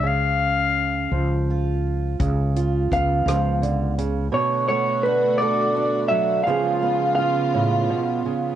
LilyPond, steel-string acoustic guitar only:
\new Staff \with { instrumentName = "Steel-string acoustic guitar" } { \clef bass \time 6/8 \key cis \phrygian \tempo 4. = 56 << { r2 eis'4 | r8 eis'8 b2 | r8 a8 d'8 a'8 d'4 | <eis b eis' gis'>8 b8 eis'2 | } \\ { cis4. eis4. | cis4. eis8 d8 cis8 | b,2~ b,8 fis8 | cis4. a,8 b,8 cis8 | } >> }